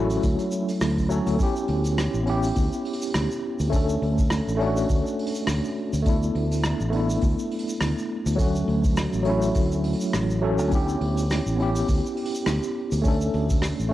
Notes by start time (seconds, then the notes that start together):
Already playing: A1 F#3 A3 C#4 E4 F#4
0.10 open hi-hat, shaker
0.23 D2, kick, open hi-hat, shaker
0.39 open hi-hat, shaker
0.52 shaker
0.69 open hi-hat, shaker
0.81 D2, cross-stick, open hi-hat, shaker
0.97 kick, open hi-hat, shaker
1.09 F#3 A3 C#4 A4, shaker
1.27 D2, open hi-hat, shaker
1.37 B3 C#4, kick, open hi-hat, shaker
1.41 E4 G4
1.56 shaker
1.68 D2, open hi-hat
1.84 open hi-hat, shaker
1.98 cross-stick, open hi-hat, shaker
2.14 A1, shaker
2.23 B3 C#4, open hi-hat
2.28 E4 G4
2.43 open hi-hat, shaker
2.56 D2, kick, open hi-hat, shaker
2.73 shaker
2.85 open hi-hat
2.93 open hi-hat
3.01 open hi-hat, shaker
3.14 D2, cross-stick, open hi-hat, shaker
3.31 shaker
3.60 D2, open hi-hat, shaker
3.70 A3 C#4, kick, open hi-hat, shaker
3.74 D4 A4
3.89 shaker
4.02 D2, open hi-hat
4.18 kick, open hi-hat, shaker
4.30 cross-stick, open hi-hat, shaker
4.47 A1, shaker
4.57 A3 C#4, open hi-hat
4.61 D4 F#4
4.77 open hi-hat, shaker
4.89 D2, kick, open hi-hat, shaker
5.07 shaker
5.19 open hi-hat
5.27 open hi-hat
5.35 open hi-hat, shaker
5.47 D2, cross-stick, open hi-hat, shaker
5.64 shaker
5.93 D2, open hi-hat, shaker
6.02 A3 B3, kick, open hi-hat
6.07 D4 E4, shaker
6.23 shaker
6.35 D2, open hi-hat
6.51 open hi-hat, shaker
6.64 cross-stick, open hi-hat, shaker
6.80 A1, shaker
6.90 A3 B3, open hi-hat
6.94 D4 E4
7.09 open hi-hat, shaker
7.21 D2, kick, open hi-hat, shaker
7.39 shaker
7.51 open hi-hat
7.59 open hi-hat
7.67 open hi-hat, shaker
7.80 D2, cross-stick, open hi-hat, shaker
7.98 shaker
8.26 D2, open hi-hat, shaker
8.36 F#3 A3, kick, open hi-hat, shaker
8.40 C#4 F#4
8.55 shaker
8.68 D2, open hi-hat
8.84 kick, open hi-hat, shaker
8.97 cross-stick, open hi-hat, shaker
9.13 A1, shaker
9.23 F#3 A3, open hi-hat
9.27 C#4 E4
9.42 open hi-hat, shaker
9.55 D2, kick, open hi-hat, shaker
9.72 shaker
9.84 open hi-hat
9.93 open hi-hat
10.01 open hi-hat, shaker
10.13 A1, cross-stick, open hi-hat, shaker
10.30 shaker
10.41 F#3 A3 C#4 A4
10.59 D2, open hi-hat, shaker
10.69 B3 C#4, kick, open hi-hat, shaker
10.73 E4 G4
10.89 shaker
11.01 D2, open hi-hat
11.17 open hi-hat, shaker
11.30 cross-stick, open hi-hat, shaker
11.46 A1, shaker
11.56 B3 C#4, open hi-hat
11.60 E4 G4
11.75 open hi-hat, shaker
11.88 D2, kick, open hi-hat, shaker
12.06 shaker
12.17 open hi-hat
12.25 open hi-hat
12.35 open hi-hat, shaker
12.46 D2, cross-stick, open hi-hat, shaker
12.63 shaker
12.92 D2, open hi-hat, shaker
13.02 A3 C#4, kick, open hi-hat, shaker
13.06 D4 A4
13.21 shaker
13.33 D2, open hi-hat
13.50 kick, open hi-hat, shaker
13.62 cross-stick, open hi-hat, shaker
13.80 A1, shaker
13.89 A3